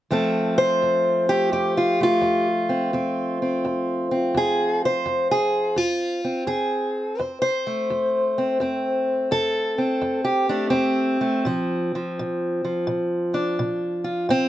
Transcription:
0.11 0.77 F2 medium
0.11 5.78 F3 soft
0.11 1.30 A3 soft
0.11 1.29 C4 soft
0.11 0.57 A4 soft
0.58 1.76 C5 medium
0.82 1.48 F2 medium
1.29 2.00 A3 soft
1.29 1.52 G4 medium
1.52 2.18 F2 medium
1.52 2.47 G4 medium
1.77 2.00 F4 medium
2.01 5.78 A3 soft
2.01 4.14 F4 medium
2.21 2.88 F2 medium
2.69 2.94 C4 soft
2.93 3.60 F2 medium
2.93 3.42 C4 soft
3.42 4.11 C4 soft
3.65 4.31 F2 medium
4.11 6.24 C4 soft
4.35 5.01 F2 medium
4.35 4.84 G#4 medium
4.85 5.31 C5 medium
5.06 5.72 F2 medium
5.31 5.77 G#4 medium
5.76 6.43 F2 medium
5.76 6.47 F4 medium
6.24 8.37 C4 soft
6.47 7.14 F2 medium
6.47 7.20 G#4 medium
7.19 7.85 F2 medium
7.19 7.41 C5 medium
7.42 9.31 C5 medium
7.67 10.49 A3 soft
7.90 8.56 F2 medium
8.38 8.60 C4 soft
8.60 9.26 F2 medium
8.60 9.77 C4 soft
9.31 9.97 F2 medium
9.31 10.24 A4 medium
9.78 10.49 C4 soft
10.02 10.68 F2 medium
10.24 11.20 G4 medium
10.49 11.20 A3 soft
10.49 10.70 D4 medium
10.70 11.39 F2 medium
10.70 13.55 C4 medium
11.21 11.45 A3 soft
11.45 12.11 A#2 medium
11.45 11.95 F3 soft
11.95 12.64 F3 soft
12.19 12.83 A#2 medium
12.65 14.49 F3 soft
12.87 13.52 A#2 medium
13.34 14.25 D4 soft
13.59 14.24 A#2 medium
14.04 14.30 F4 soft
14.29 14.49 A#2 medium
14.29 14.49 C4 loud

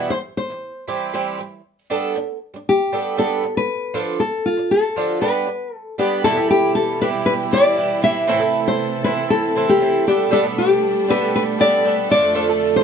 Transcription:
0.00 0.11 E2 medium
0.00 0.12 B2 medium
0.00 0.10 E3 medium
0.00 0.12 G3 medium
0.00 0.12 B3 medium
0.00 0.12 E4 medium
0.10 0.32 E3 soft
0.10 0.32 G3 medium
0.10 0.17 C5 medium
0.37 0.85 C5 medium
0.50 0.70 E3 soft
0.50 0.71 G3 soft
0.87 1.12 E3 medium
0.87 1.12 G3 medium
0.87 1.13 C4 medium
0.87 1.13 G4 medium
1.13 1.37 E3 medium
1.13 1.39 G3 medium
1.13 1.39 C4 medium
1.13 1.40 G4 medium
1.39 1.59 E3 medium
1.39 1.60 G3 medium
1.90 2.14 G3 medium
1.90 2.16 B3 medium
1.90 2.16 D4 medium
1.90 2.16 A4 medium
2.16 2.36 G3 medium
2.16 2.37 D4 medium
2.54 2.74 G3 soft
2.54 2.75 D4 soft
2.69 3.16 G4 medium
2.92 3.16 G3 medium
2.92 3.17 B3 medium
2.92 3.17 D4 medium
2.92 3.17 A4 medium
3.17 3.42 G3 medium
3.17 3.44 B3 medium
3.17 3.44 D4 medium
3.17 3.44 A4 medium
3.17 3.57 A4 medium
3.43 3.64 G3 medium
3.43 3.65 D4 medium
3.57 4.17 B4 medium
3.94 4.19 D3 medium
3.94 4.18 F3 medium
3.94 4.20 D4 medium
3.94 4.20 F4 medium
3.94 4.20 A4 medium
4.19 4.41 D3 medium
4.19 4.40 F3 medium
4.19 4.46 A4 medium
4.46 4.72 F4 medium
4.57 4.79 D3 medium
4.57 4.78 F3 soft
4.71 5.21 A4 medium
4.96 5.21 D3 medium
4.96 5.22 F3 medium
4.96 5.21 D4 medium
4.96 5.22 F4 medium
4.96 5.22 A4 medium
5.21 5.45 G3 medium
5.21 5.48 B3 medium
5.21 5.47 D4 medium
5.21 5.76 B4 medium
5.21 5.48 B4 medium
5.47 5.68 G3 medium
5.76 5.95 A4 medium
5.98 6.24 G3 medium
5.98 6.25 B3 medium
5.98 6.24 D4 medium
5.98 6.24 G4 medium
5.98 6.25 B4 medium
6.23 6.37 E2 medium
6.23 8.26 B2 medium
6.23 6.37 B2 medium
6.23 10.03 E3 medium
6.23 6.38 E3 medium
6.23 8.26 G3 medium
6.23 6.37 G3 medium
6.23 10.03 E4 medium
6.23 6.37 E4 medium
6.23 8.26 G4 medium
6.23 6.36 G4 loud
6.23 6.48 A4 loud
6.37 7.01 E3 soft
6.37 7.00 G3 soft
6.37 7.02 E4 medium
6.37 7.01 G4 medium
6.50 6.74 G4 medium
6.75 6.99 A4 loud
7.01 7.51 E3 medium
7.01 7.51 G3 medium
7.01 7.52 E4 medium
7.01 7.52 G4 medium
7.01 7.08 B4 loud
7.26 7.33 B4 loud
7.51 7.75 E3 medium
7.51 7.76 G3 medium
7.51 7.76 E4 medium
7.51 7.77 G4 medium
7.51 8.03 D5 loud
7.76 8.01 E3 medium
7.76 8.01 G3 medium
7.76 8.02 E4 medium
7.76 8.03 G4 medium
8.02 8.27 E3 medium
8.02 8.28 G3 medium
8.02 8.27 E4 medium
8.02 8.28 G4 medium
8.02 8.67 E5 loud
8.27 8.41 A2 medium
8.27 10.06 C3 medium
8.27 8.41 E3 medium
8.27 12.84 A3 medium
8.27 8.40 C4 medium
8.27 8.40 E4 medium
8.27 10.05 A4 medium
8.27 8.39 A4 loud
8.40 9.04 C4 soft
8.40 9.05 E4 medium
8.40 9.05 A4 medium
8.68 9.03 C5 loud
9.04 9.55 E3 medium
9.04 9.55 C4 medium
9.04 9.56 E4 medium
9.04 9.57 A4 medium
9.04 9.11 B4 loud
9.30 9.69 A4 loud
9.56 9.79 E3 medium
9.56 9.80 C4 medium
9.56 9.81 E4 medium
9.56 9.82 A4 medium
9.69 10.06 G4 loud
9.80 10.06 E3 medium
9.80 10.07 C4 medium
9.80 10.07 E4 medium
9.80 10.08 A4 medium
10.07 12.09 B2 medium
10.07 10.29 G3 medium
10.07 12.10 G3 medium
10.07 10.30 B3 medium
10.07 12.09 D4 medium
10.07 10.31 D4 medium
10.07 10.32 G4 medium
10.07 12.84 A4 loud
10.07 10.31 A4 medium
10.31 10.44 G3 medium
10.31 10.45 B3 medium
10.31 10.45 D4 medium
10.31 10.43 A4 medium
10.31 10.39 A4 loud
10.45 11.08 B3 soft
10.45 11.09 D4 medium
10.45 11.10 A4 medium
10.58 11.11 G4 loud
11.08 11.57 G3 medium
11.08 11.59 B3 medium
11.08 11.60 D4 medium
11.08 11.60 A4 medium
11.08 11.34 B4 loud
11.36 11.42 B4 loud
11.59 11.83 G3 medium
11.59 11.85 B3 medium
11.59 11.85 D4 medium
11.59 11.86 A4 medium
11.59 12.10 D5 loud
11.85 12.10 G3 medium
11.85 12.10 B3 medium
11.85 12.10 D4 medium
11.85 12.10 A4 medium
12.10 12.84 F2 medium
12.10 12.84 D3 medium
12.10 12.33 F3 medium
12.10 12.84 F3 medium
12.10 12.34 A3 medium
12.10 12.34 D4 medium
12.10 12.84 F4 medium
12.10 12.34 A4 medium
12.10 12.76 D5 loud
12.34 12.48 F3 medium
12.34 12.49 A3 medium
12.34 12.48 D4 loud
12.34 12.48 A4 medium
12.49 12.84 A3 soft
12.49 12.84 D4 medium
12.49 12.84 A4 medium
12.76 12.84 C5 loud

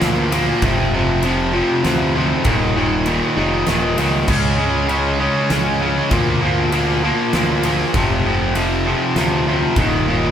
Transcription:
0.01 0.51 D2 medium
0.01 0.30 A#2 loud
0.01 0.31 F3 loud
0.01 0.32 A#3 loud
0.01 snare medium
0.01 ride medium
0.31 0.61 A#2 medium
0.31 0.61 F3 loud
0.31 0.61 A#3 loud
0.31 ride medium
0.62 1.61 F1 loud
0.62 0.91 F2 loud
0.62 0.93 C3 loud
0.62 0.93 F3 loud
0.62 kick loud
0.62 ride medium
0.93 1.23 F2 medium
0.93 1.23 C3 loud
0.93 1.24 F3 loud
1.23 1.52 F2 loud
1.23 1.53 C3 loud
1.23 1.54 F3 loud
1.23 ride medium
1.53 1.83 F2 loud
1.53 1.84 C3 loud
1.53 1.84 F3 loud
1.84 2.34 D2 loud
1.84 2.13 F2 loud
1.84 2.14 C3 loud
1.84 2.15 F3 loud
1.84 snare medium
1.84 ride medium
2.14 2.44 F2 loud
2.14 2.44 C3 medium
2.14 2.44 F3 loud
2.44 3.20 D#1 loud
2.44 2.74 D#2 loud
2.44 2.75 A#2 loud
2.44 2.75 D#3 loud
2.44 kick loud
2.44 ride medium
2.75 3.05 D#2 medium
2.75 3.06 A#2 medium
2.75 3.07 D#3 loud
3.06 3.36 D#2 medium
3.06 3.36 A#2 loud
3.06 3.37 D#3 loud
3.06 ride medium
3.37 3.65 F1 medium
3.37 3.66 D#2 medium
3.37 3.67 A#2 medium
3.37 3.67 D#3 medium
3.67 3.95 D#1 medium
3.67 3.96 D#2 loud
3.67 3.97 A#2 loud
3.67 3.98 D#3 loud
3.67 snare medium
3.67 ride medium
3.98 4.26 C#2 medium
3.98 4.27 D#2 medium
3.98 4.27 A#2 medium
3.98 4.28 D#3 loud
3.98 ride medium
4.28 5.27 C#2 loud
4.28 4.57 C#3 loud
4.28 4.58 G#3 loud
4.28 4.58 C#4 loud
4.28 kick loud
4.28 crash loud
4.58 4.87 C#3 medium
4.58 4.88 G#3 medium
4.58 4.88 C#4 loud
4.88 5.18 C#3 loud
4.88 5.20 G#3 loud
4.88 5.19 C#4 loud
4.88 ride medium
5.19 5.49 C#3 medium
5.19 5.50 G#3 medium
5.19 5.50 C#4 loud
5.50 6.00 C#2 medium
5.50 5.80 C#3 loud
5.50 5.81 G#3 loud
5.50 5.81 C#4 loud
5.50 snare medium
5.50 ride medium
5.81 6.10 C#3 medium
5.81 6.11 G#3 medium
5.81 6.10 C#4 loud
6.10 7.10 D2 loud
6.10 6.40 A#2 loud
6.10 6.42 F3 loud
6.10 6.42 A#3 loud
6.10 kick loud
6.10 ride medium
6.42 6.71 A#2 medium
6.42 6.72 F3 medium
6.42 6.72 A#3 loud
6.72 7.01 A#2 loud
6.72 7.02 F3 loud
6.72 7.03 A#3 loud
6.72 ride medium
7.03 7.33 A#2 medium
7.03 7.33 F3 loud
7.03 7.34 A#3 loud
7.33 7.83 D2 loud
7.33 7.63 A#2 loud
7.33 7.64 F3 loud
7.33 7.65 A#3 loud
7.33 snare medium
7.33 ride medium
7.63 7.93 A#2 medium
7.63 7.93 F3 loud
7.63 7.93 A#3 loud
7.63 ride medium
7.94 8.93 F1 loud
7.94 8.23 F2 loud
7.94 8.25 C3 loud
7.94 8.25 F3 loud
7.94 kick loud
7.94 ride medium
8.25 8.54 F2 medium
8.25 8.55 C3 loud
8.25 8.55 F3 loud
8.55 8.85 F2 loud
8.55 8.85 C3 loud
8.55 8.86 F3 loud
8.55 ride medium
8.86 9.15 F2 loud
8.86 9.16 C3 loud
8.86 9.17 F3 loud
9.16 9.65 D2 loud
9.16 9.46 F2 medium
9.16 9.47 C3 loud
9.16 9.47 F3 loud
9.16 snare medium
9.16 ride medium
9.47 9.75 F2 medium
9.47 9.76 C3 loud
9.47 9.76 F3 loud
9.76 10.31 D#1 loud
9.76 10.07 D#2 loud
9.76 10.08 A#2 loud
9.76 10.08 D#3 loud
9.76 kick loud
9.76 ride medium
10.08 10.31 D#2 loud
10.08 10.31 A#2 medium
10.08 10.31 D#3 loud

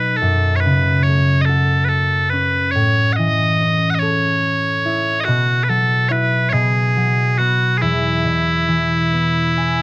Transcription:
0.00 0.25 B2 medium
0.00 0.25 F#3 soft
0.00 1.54 B3 soft
0.00 2.46 D#4 soft
0.00 0.16 B4 medium
0.16 0.56 A4 medium
0.22 2.80 F#2 medium
0.56 0.60 C#5 medium
0.60 1.03 B4 medium
0.65 2.80 C#3 soft
1.03 1.41 C#5 medium
1.08 4.41 A3 soft
1.41 1.45 D#5 medium
1.45 3.92 F#4 soft
1.45 1.84 A4 medium
1.84 1.88 B4 medium
1.88 2.29 A4 medium
2.29 3.60 C#4 medium
2.29 2.71 B4 medium
2.71 5.33 A2 medium
2.71 3.13 C#5 medium
3.13 3.90 D#5 medium
3.13 3.16 F#5 medium
3.18 5.33 E3 medium
3.60 6.50 C#4 soft
3.90 3.95 F#5 medium
3.95 3.99 D#5 medium
3.99 6.22 A4 medium
3.99 5.20 C#5 medium
4.85 6.10 E4 medium
5.20 5.25 D#5 medium
5.25 6.52 B2 medium
5.25 5.64 F#4 medium
5.64 5.69 B4 medium
5.69 6.59 F#3 medium
5.69 6.09 A4 medium
6.09 8.72 E4 medium
6.09 6.49 B4 medium
6.09 6.12 C#5 medium
6.49 7.87 B2 medium
6.49 7.38 G#4 medium
6.49 6.53 C#5 medium
6.97 7.87 F#3 medium
7.38 9.13 B3 medium
7.38 7.78 F#4 medium
7.78 7.82 G#4 medium
7.82 9.82 E2 medium
7.82 9.82 E4 medium
8.24 9.82 B2 soft
8.68 9.82 E3 soft
9.13 9.82 B3 medium
9.57 9.82 G#5 medium

